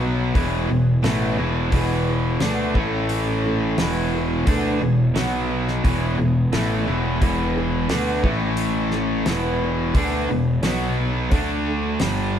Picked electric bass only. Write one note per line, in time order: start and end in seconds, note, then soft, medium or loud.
0.00 0.31 B1 medium
0.35 0.67 E1 medium
0.71 1.02 E1 medium
1.05 1.36 A1 medium
1.39 1.70 E1 medium
1.72 2.37 E1 medium
2.41 2.73 D2 medium
2.75 3.74 A1 medium
3.78 4.43 E1 medium
4.47 4.79 D2 medium
4.81 5.13 E1 medium
5.16 5.80 B1 medium
5.85 6.16 E1 medium
6.19 6.51 E1 medium
6.54 6.85 A1 medium
6.88 7.19 E1 medium
7.22 7.86 E1 medium
7.90 8.22 D2 medium
8.24 9.23 A1 medium
9.26 9.91 E1 medium
9.95 10.27 D2 medium
10.30 10.62 E1 medium
10.63 11.29 B1 medium
11.32 11.97 D2 medium
12.01 12.39 G1 medium